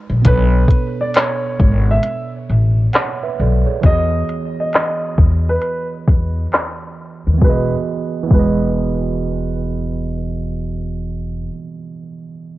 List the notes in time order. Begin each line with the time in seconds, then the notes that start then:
Already playing: G#3 D#4 F#4 B4 G#5
0.10 A#1
0.20 B2 B3
0.24 B1 D4 A4 B4, kick, closed hi-hat
0.28 C#5
0.68 kick, closed hi-hat
1.01 D5
1.14 C#5, snare, clap, closed hi-hat
1.60 G#1, kick
1.91 E5
2.03 closed hi-hat
2.50 A1
2.93 C#5 F#5, snare, clap, closed hi-hat
3.23 B4 E5
3.40 B1 A4 D5
3.66 G#4 C#5
3.81 E2 E3 B3, kick, closed hi-hat
3.85 F#4 G#4 D#5
3.89 D#5
4.29 closed hi-hat
4.60 D#5
4.73 D#5, snare, clap, closed hi-hat
5.18 E2, kick
5.49 B4
5.61 closed hi-hat
6.07 E2, kick, closed hi-hat
6.52 snare, clap, closed hi-hat
7.27 D#2
7.34 E3
7.38 B3 F#4, kick
7.42 E1 G#4 B4
7.49 D#5
8.23 E3
8.27 B3 F#4, kick
8.31 E1 B4
8.35 G#4 D#5